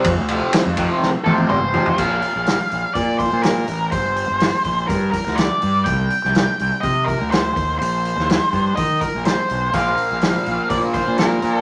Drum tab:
CC |----------------|x---------------|----------------|----------------|
RD |x-x-x-x---------|----------------|----------------|----------------|
HH |----------------|--o-o-o-o-o-o-o-|o-o-o-o-o-o-o-o-|o-o-o-o-o-o-o-o-|
SD |----o---o-------|----o-------o---|----o------oo---|---oo-------o---|
T1 |----------oo----|----------------|----------------|----------------|
T2 |------------o---|----------------|----------------|----------------|
FT |--------------oo|----------------|----------------|----------------|
BD |o-----o---------|o-------o-o-----|o-----o-o-o-----|o-------o-o---o-|

CC |----------------|----------------|
RD |----------------|----------------|
HH |o-o-o-o-o-o-o-o-|o-o-o-o-o-o-o-o-|
SD |---oo-------o---|----o-------o---|
T1 |----------------|----------------|
T2 |----------------|----------------|
FT |----------------|----------------|
BD |------o-o-o-----|o-------o-o-----|